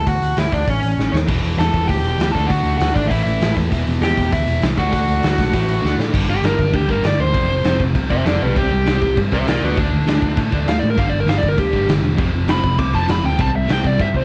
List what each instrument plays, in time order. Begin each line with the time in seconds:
0.06 picked electric bass D2, lead electric guitar F#4 F#5, kick, open hi-hat
0.21 picked electric bass D2, open hi-hat
0.37 picked electric bass D2, lead electric guitar E4 E5, snare, open hi-hat
0.52 picked electric bass D2, lead electric guitar D4 D5, kick, open hi-hat
0.68 picked electric bass A1, lead electric guitar C#4 C#5, kick, open hi-hat
0.83 picked electric bass A1, open hi-hat
0.97 picked electric bass A1, snare
1.13 picked electric bass D#2, snare
1.28 picked electric bass E1, distorted electric guitar E2 B2 E3, kick, crash
1.42 picked electric bass E1, open hi-hat
1.58 picked electric bass E2, lead electric guitar A4 A5, snare, open hi-hat
1.74 picked electric bass E1, kick, open hi-hat
1.88 picked electric bass D2, lead electric guitar G4 G5, kick, open hi-hat
2.03 picked electric bass E1, distorted electric guitar E2 B2 E3, open hi-hat
2.18 picked electric bass D2, distorted electric guitar E2 B2 E3, snare, open hi-hat
2.32 picked electric bass D2, distorted electric guitar D3 A3, lead electric guitar A4 A5, kick, open hi-hat
2.37 distorted electric guitar D4
2.46 picked electric bass D2, lead electric guitar F#4 F#5, kick, open hi-hat
2.63 picked electric bass D2, open hi-hat
2.78 picked electric bass D2, lead electric guitar F#4 F#5, open hi-hat
2.82 snare
2.94 picked electric bass G#1, lead electric guitar D4 D5, kick, open hi-hat
3.08 picked electric bass A1, distorted electric guitar A2 E3, lead electric guitar E4 E5, kick
3.12 distorted electric guitar A3, open hi-hat
3.23 picked electric bass A1, lead electric guitar E4 E5, open hi-hat
3.41 picked electric bass A1, snare, open hi-hat
3.57 picked electric bass E2, kick, open hi-hat
3.71 picked electric bass E1, distorted electric guitar E2 B2 E3, kick, open hi-hat
3.87 picked electric bass E1, open hi-hat
4.01 picked electric bass E2, lead electric guitar G4 G5, snare, open hi-hat
4.17 picked electric bass E1, kick, open hi-hat
4.32 picked electric bass D2, lead electric guitar E4 E5, kick, open hi-hat
4.47 picked electric bass E1, distorted electric guitar E2 B2 E3, open hi-hat
4.61 picked electric bass C2, distorted electric guitar E2 B2 E3, snare, open hi-hat
4.77 picked electric bass D2, distorted electric guitar D3 A3, lead electric guitar F#4 F#5, kick, open hi-hat
4.81 distorted electric guitar D4
4.92 picked electric bass D2, lead electric guitar F#4 F#5, kick, open hi-hat
5.08 picked electric bass D2, open hi-hat
5.23 picked electric bass D2, snare, open hi-hat
5.38 picked electric bass B1, kick, open hi-hat
5.52 picked electric bass A1, distorted electric guitar A2 E3, kick, open hi-hat
5.56 distorted electric guitar A3
5.68 picked electric bass A1, open hi-hat
5.82 picked electric bass D2, distorted electric guitar D3 A3 D4, snare
5.98 picked electric bass A2, snare
6.13 picked electric bass G1, distorted electric guitar G2 D3 G3, kick, crash
6.28 picked electric bass G1, distorted electric guitar G2 D3, lead electric guitar G4
6.43 picked electric bass G1, distorted electric guitar G2 D3 G3, lead electric guitar A#4, snare, crash
6.59 picked electric bass G1, distorted electric guitar G2 D3, kick
6.74 picked electric bass D2, distorted electric guitar G2 D3, lead electric guitar G4, kick, crash
6.88 picked electric bass G1, distorted electric guitar G2 D3 G3, lead electric guitar A#4, kick
7.03 picked electric bass G1, distorted electric guitar G2 D3 G3, lead electric guitar D5, snare, crash
7.19 picked electric bass D2, distorted electric guitar G2 D3, lead electric guitar C5
7.34 picked electric bass F1, distorted electric guitar F2 C3 F3, kick, crash
7.50 picked electric bass F1, distorted electric guitar F2 C3
7.64 picked electric bass F1, distorted electric guitar F2 C3 F3, snare, crash
7.80 picked electric bass F1, distorted electric guitar F2 C3, kick
7.95 picked electric bass C2, distorted electric guitar F2 C3, kick, crash
8.10 picked electric bass F1, distorted electric guitar F2 C3 F3, lead electric guitar C5 E5, kick
8.26 picked electric bass F1, distorted electric guitar F2 C3 F3, lead electric guitar A4 D5, snare, crash
8.42 picked electric bass B1, distorted electric guitar F2 C3, lead electric guitar G4 B4
8.55 picked electric bass C2, distorted electric guitar C3 G3 C4, lead electric guitar G4, kick, crash
8.71 picked electric bass C2, distorted electric guitar C3 G3
8.86 picked electric bass C2, distorted electric guitar C3 G3 C4, snare, crash
9.02 picked electric bass C2, distorted electric guitar C3 G3, kick
9.16 picked electric bass G2, distorted electric guitar C3 G3, kick, crash
9.32 picked electric bass C2, distorted electric guitar C3 G3 C4, lead electric guitar C5 E5, kick
9.47 picked electric bass C2, distorted electric guitar C3 G3 C4, lead electric guitar A#4 D5, snare, crash
9.62 picked electric bass D2, distorted electric guitar D3 A3 D4, lead electric guitar F#4 B4
9.77 picked electric bass D2, distorted electric guitar D3 A3 D4, lead electric guitar D4, kick, crash
9.92 picked electric bass D2, distorted electric guitar D3 A3
10.06 picked electric bass D2, distorted electric guitar D3 A3 D4, snare, crash
10.21 picked electric bass D2, distorted electric guitar D3 A3, kick
10.36 picked electric bass A2, distorted electric guitar D3 A3 D4, kick, crash
10.51 picked electric bass D2, distorted electric guitar D3 A3 D4, kick
10.66 picked electric bass D2, distorted electric guitar D3 A3, lead electric guitar F5, snare, crash
10.79 picked electric bass A2, distorted electric guitar D3 A3, lead electric guitar D5
10.90 lead electric guitar A#4
10.97 picked electric bass G1, distorted electric guitar G2 D3 G3, lead electric guitar F5, kick, crash
11.09 picked electric bass G1, distorted electric guitar G2 D3, lead electric guitar D5
11.20 lead electric guitar A#4
11.26 picked electric bass G1, distorted electric guitar G2 D3 G3, lead electric guitar F5, snare, crash
11.38 lead electric guitar D5
11.42 picked electric bass G1, distorted electric guitar G2 D3, kick
11.49 lead electric guitar A#4
11.57 picked electric bass D2, distorted electric guitar G2 D3, lead electric guitar G4, kick, crash
11.72 picked electric bass G1, distorted electric guitar G2 D3 G3, kick
11.87 picked electric bass G1, distorted electric guitar G2 D3 G3, snare, crash
12.02 picked electric bass E1, distorted electric guitar G2 D3
12.16 picked electric bass F1, distorted electric guitar F2 C3 F3, kick, crash
12.31 picked electric bass F1, distorted electric guitar F2 C3
12.47 picked electric bass F1, distorted electric guitar F2 C3 F3, lead electric guitar B5, snare, crash
12.62 picked electric bass F1, distorted electric guitar F2 C3, kick
12.78 picked electric bass C2, distorted electric guitar F2 C3, lead electric guitar D6, kick, crash
12.93 picked electric bass F1, distorted electric guitar F2 C3 F3, lead electric guitar A5, kick
13.08 picked electric bass F1, distorted electric guitar F2 C3 F3, lead electric guitar B5, snare, crash
13.23 picked electric bass D2, distorted electric guitar F2 C3, lead electric guitar G5
13.39 picked electric bass C2, distorted electric guitar C3 G3 C4, lead electric guitar A5, kick, crash
13.53 picked electric bass C2, distorted electric guitar C3 G3, lead electric guitar E5
13.69 picked electric bass C2, distorted electric guitar C3 G3 C4, lead electric guitar G5, snare, crash
13.84 picked electric bass C2, distorted electric guitar C3 G3, lead electric guitar D5, kick
14.00 picked electric bass G2, distorted electric guitar C3 G3, lead electric guitar E5, kick, crash
14.14 picked electric bass C2, distorted electric guitar C3 G3 C4, lead electric guitar C5, kick